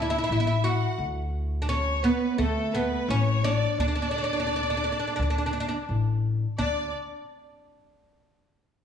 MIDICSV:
0, 0, Header, 1, 4, 480
1, 0, Start_track
1, 0, Tempo, 699301
1, 677, Time_signature, 4, 2, 24, 8
1, 6073, End_track
2, 0, Start_track
2, 0, Title_t, "Violin section"
2, 0, Program_c, 0, 48
2, 0, Note_on_c, 0, 76, 82
2, 440, Note_off_c, 0, 76, 0
2, 440, Note_on_c, 0, 78, 70
2, 679, Note_off_c, 0, 78, 0
2, 1164, Note_on_c, 0, 73, 80
2, 1385, Note_off_c, 0, 73, 0
2, 1404, Note_on_c, 0, 71, 75
2, 1642, Note_off_c, 0, 71, 0
2, 1647, Note_on_c, 0, 69, 78
2, 1867, Note_off_c, 0, 69, 0
2, 1884, Note_on_c, 0, 71, 74
2, 2122, Note_off_c, 0, 71, 0
2, 2128, Note_on_c, 0, 73, 84
2, 2364, Note_off_c, 0, 73, 0
2, 2366, Note_on_c, 0, 74, 89
2, 2586, Note_off_c, 0, 74, 0
2, 2595, Note_on_c, 0, 74, 96
2, 4010, Note_off_c, 0, 74, 0
2, 4529, Note_on_c, 0, 74, 96
2, 4748, Note_off_c, 0, 74, 0
2, 6073, End_track
3, 0, Start_track
3, 0, Title_t, "Oud"
3, 0, Program_c, 1, 24
3, 13, Note_on_c, 1, 64, 66
3, 61, Note_off_c, 1, 64, 0
3, 69, Note_on_c, 1, 64, 77
3, 117, Note_off_c, 1, 64, 0
3, 127, Note_on_c, 1, 64, 67
3, 156, Note_off_c, 1, 64, 0
3, 164, Note_on_c, 1, 64, 74
3, 213, Note_off_c, 1, 64, 0
3, 221, Note_on_c, 1, 64, 66
3, 266, Note_off_c, 1, 64, 0
3, 274, Note_on_c, 1, 64, 77
3, 315, Note_off_c, 1, 64, 0
3, 323, Note_on_c, 1, 64, 70
3, 374, Note_off_c, 1, 64, 0
3, 440, Note_on_c, 1, 66, 81
3, 662, Note_off_c, 1, 66, 0
3, 1111, Note_on_c, 1, 62, 66
3, 1156, Note_off_c, 1, 62, 0
3, 1159, Note_on_c, 1, 61, 91
3, 1382, Note_off_c, 1, 61, 0
3, 1399, Note_on_c, 1, 59, 87
3, 1633, Note_off_c, 1, 59, 0
3, 1635, Note_on_c, 1, 57, 83
3, 1882, Note_off_c, 1, 57, 0
3, 1885, Note_on_c, 1, 59, 86
3, 2129, Note_off_c, 1, 59, 0
3, 2131, Note_on_c, 1, 61, 92
3, 2361, Note_off_c, 1, 61, 0
3, 2363, Note_on_c, 1, 62, 100
3, 2600, Note_off_c, 1, 62, 0
3, 2608, Note_on_c, 1, 62, 91
3, 2653, Note_off_c, 1, 62, 0
3, 2663, Note_on_c, 1, 62, 63
3, 2706, Note_off_c, 1, 62, 0
3, 2714, Note_on_c, 1, 62, 72
3, 2751, Note_off_c, 1, 62, 0
3, 2760, Note_on_c, 1, 62, 63
3, 2805, Note_off_c, 1, 62, 0
3, 2821, Note_on_c, 1, 62, 68
3, 2861, Note_off_c, 1, 62, 0
3, 2869, Note_on_c, 1, 62, 59
3, 2901, Note_off_c, 1, 62, 0
3, 2909, Note_on_c, 1, 62, 69
3, 2958, Note_off_c, 1, 62, 0
3, 2972, Note_on_c, 1, 62, 55
3, 3009, Note_off_c, 1, 62, 0
3, 3018, Note_on_c, 1, 62, 61
3, 3058, Note_off_c, 1, 62, 0
3, 3066, Note_on_c, 1, 62, 53
3, 3113, Note_off_c, 1, 62, 0
3, 3130, Note_on_c, 1, 62, 64
3, 3171, Note_off_c, 1, 62, 0
3, 3178, Note_on_c, 1, 62, 52
3, 3219, Note_off_c, 1, 62, 0
3, 3227, Note_on_c, 1, 62, 63
3, 3267, Note_off_c, 1, 62, 0
3, 3275, Note_on_c, 1, 62, 54
3, 3314, Note_off_c, 1, 62, 0
3, 3322, Note_on_c, 1, 62, 63
3, 3371, Note_off_c, 1, 62, 0
3, 3379, Note_on_c, 1, 62, 54
3, 3420, Note_off_c, 1, 62, 0
3, 3429, Note_on_c, 1, 62, 59
3, 3475, Note_off_c, 1, 62, 0
3, 3483, Note_on_c, 1, 62, 52
3, 3529, Note_off_c, 1, 62, 0
3, 3541, Note_on_c, 1, 62, 63
3, 3577, Note_off_c, 1, 62, 0
3, 3585, Note_on_c, 1, 62, 56
3, 3631, Note_off_c, 1, 62, 0
3, 3640, Note_on_c, 1, 62, 66
3, 3684, Note_off_c, 1, 62, 0
3, 3695, Note_on_c, 1, 62, 61
3, 3738, Note_off_c, 1, 62, 0
3, 3749, Note_on_c, 1, 62, 69
3, 3786, Note_off_c, 1, 62, 0
3, 3795, Note_on_c, 1, 62, 61
3, 3837, Note_off_c, 1, 62, 0
3, 3845, Note_on_c, 1, 62, 71
3, 3890, Note_off_c, 1, 62, 0
3, 3902, Note_on_c, 1, 62, 61
3, 3945, Note_off_c, 1, 62, 0
3, 4520, Note_on_c, 1, 62, 77
3, 4743, Note_off_c, 1, 62, 0
3, 6073, End_track
4, 0, Start_track
4, 0, Title_t, "Upright bass"
4, 0, Program_c, 2, 32
4, 0, Note_on_c, 2, 38, 97
4, 95, Note_off_c, 2, 38, 0
4, 202, Note_on_c, 2, 33, 89
4, 579, Note_off_c, 2, 33, 0
4, 676, Note_on_c, 2, 38, 85
4, 1434, Note_off_c, 2, 38, 0
4, 1636, Note_on_c, 2, 38, 91
4, 2016, Note_off_c, 2, 38, 0
4, 2116, Note_on_c, 2, 33, 94
4, 2496, Note_off_c, 2, 33, 0
4, 2597, Note_on_c, 2, 38, 83
4, 3355, Note_off_c, 2, 38, 0
4, 3561, Note_on_c, 2, 38, 95
4, 3939, Note_off_c, 2, 38, 0
4, 4041, Note_on_c, 2, 33, 84
4, 4419, Note_off_c, 2, 33, 0
4, 4520, Note_on_c, 2, 38, 83
4, 4743, Note_off_c, 2, 38, 0
4, 6073, End_track
0, 0, End_of_file